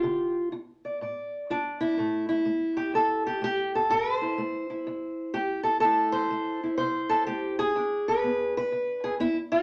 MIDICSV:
0, 0, Header, 1, 2, 480
1, 0, Start_track
1, 0, Key_signature, 0, "minor"
1, 0, Tempo, 482315
1, 36, Time_signature, 4, 2, 24, 8
1, 9578, End_track
2, 0, Start_track
2, 0, Title_t, "Steel-string acoustic guitar"
2, 0, Program_c, 0, 25
2, 0, Note_on_c, 0, 65, 74
2, 0, Note_on_c, 0, 67, 85
2, 31, Note_on_c, 0, 50, 63
2, 346, Note_off_c, 0, 67, 0
2, 480, Note_off_c, 0, 50, 0
2, 506, Note_off_c, 0, 65, 0
2, 518, Note_on_c, 0, 65, 60
2, 844, Note_on_c, 0, 74, 40
2, 965, Note_off_c, 0, 65, 0
2, 1006, Note_off_c, 0, 74, 0
2, 1008, Note_on_c, 0, 45, 50
2, 1017, Note_on_c, 0, 74, 37
2, 1450, Note_off_c, 0, 45, 0
2, 1495, Note_on_c, 0, 65, 61
2, 1500, Note_on_c, 0, 62, 77
2, 1793, Note_off_c, 0, 74, 0
2, 1797, Note_on_c, 0, 64, 83
2, 1934, Note_off_c, 0, 65, 0
2, 1965, Note_on_c, 0, 45, 64
2, 1968, Note_off_c, 0, 62, 0
2, 1972, Note_on_c, 0, 57, 43
2, 2264, Note_off_c, 0, 64, 0
2, 2276, Note_on_c, 0, 64, 70
2, 2409, Note_off_c, 0, 45, 0
2, 2436, Note_off_c, 0, 57, 0
2, 2440, Note_on_c, 0, 57, 54
2, 2754, Note_on_c, 0, 67, 81
2, 2887, Note_off_c, 0, 57, 0
2, 2921, Note_on_c, 0, 40, 57
2, 2925, Note_off_c, 0, 67, 0
2, 2935, Note_on_c, 0, 69, 88
2, 3234, Note_off_c, 0, 64, 0
2, 3236, Note_off_c, 0, 69, 0
2, 3250, Note_on_c, 0, 67, 81
2, 3368, Note_off_c, 0, 40, 0
2, 3399, Note_on_c, 0, 57, 58
2, 3411, Note_off_c, 0, 67, 0
2, 3423, Note_on_c, 0, 67, 92
2, 3720, Note_off_c, 0, 67, 0
2, 3735, Note_on_c, 0, 69, 83
2, 3847, Note_off_c, 0, 57, 0
2, 3878, Note_on_c, 0, 45, 65
2, 3886, Note_on_c, 0, 72, 100
2, 4195, Note_on_c, 0, 64, 47
2, 4327, Note_off_c, 0, 45, 0
2, 4358, Note_on_c, 0, 57, 63
2, 4376, Note_off_c, 0, 69, 0
2, 4672, Note_off_c, 0, 64, 0
2, 4676, Note_on_c, 0, 64, 38
2, 4807, Note_off_c, 0, 57, 0
2, 4844, Note_on_c, 0, 40, 59
2, 5289, Note_off_c, 0, 40, 0
2, 5312, Note_on_c, 0, 67, 79
2, 5324, Note_on_c, 0, 57, 57
2, 5325, Note_off_c, 0, 72, 0
2, 5603, Note_off_c, 0, 67, 0
2, 5607, Note_on_c, 0, 69, 85
2, 5763, Note_off_c, 0, 69, 0
2, 5769, Note_off_c, 0, 57, 0
2, 5775, Note_on_c, 0, 69, 94
2, 5795, Note_on_c, 0, 53, 66
2, 5800, Note_on_c, 0, 57, 40
2, 5805, Note_off_c, 0, 64, 0
2, 5809, Note_on_c, 0, 64, 43
2, 6093, Note_on_c, 0, 72, 83
2, 6245, Note_off_c, 0, 53, 0
2, 6262, Note_off_c, 0, 57, 0
2, 6274, Note_on_c, 0, 57, 62
2, 6575, Note_off_c, 0, 69, 0
2, 6599, Note_off_c, 0, 64, 0
2, 6603, Note_on_c, 0, 64, 42
2, 6724, Note_off_c, 0, 57, 0
2, 6731, Note_off_c, 0, 72, 0
2, 6743, Note_on_c, 0, 72, 91
2, 6763, Note_on_c, 0, 48, 57
2, 7060, Note_on_c, 0, 69, 94
2, 7208, Note_off_c, 0, 48, 0
2, 7227, Note_off_c, 0, 69, 0
2, 7231, Note_on_c, 0, 67, 84
2, 7236, Note_on_c, 0, 57, 59
2, 7538, Note_off_c, 0, 72, 0
2, 7543, Note_off_c, 0, 67, 0
2, 7552, Note_on_c, 0, 68, 87
2, 7684, Note_off_c, 0, 57, 0
2, 7717, Note_on_c, 0, 40, 65
2, 7719, Note_off_c, 0, 64, 0
2, 7723, Note_on_c, 0, 62, 40
2, 8043, Note_on_c, 0, 71, 84
2, 8164, Note_off_c, 0, 40, 0
2, 8198, Note_on_c, 0, 59, 55
2, 8508, Note_off_c, 0, 68, 0
2, 8514, Note_off_c, 0, 71, 0
2, 8531, Note_on_c, 0, 71, 91
2, 8644, Note_off_c, 0, 59, 0
2, 8679, Note_on_c, 0, 40, 56
2, 8995, Note_on_c, 0, 68, 84
2, 9096, Note_off_c, 0, 68, 0
2, 9124, Note_off_c, 0, 40, 0
2, 9153, Note_on_c, 0, 59, 60
2, 9155, Note_off_c, 0, 71, 0
2, 9159, Note_on_c, 0, 64, 90
2, 9318, Note_off_c, 0, 64, 0
2, 9471, Note_on_c, 0, 67, 96
2, 9578, Note_off_c, 0, 59, 0
2, 9578, Note_off_c, 0, 62, 0
2, 9578, Note_off_c, 0, 67, 0
2, 9578, End_track
0, 0, End_of_file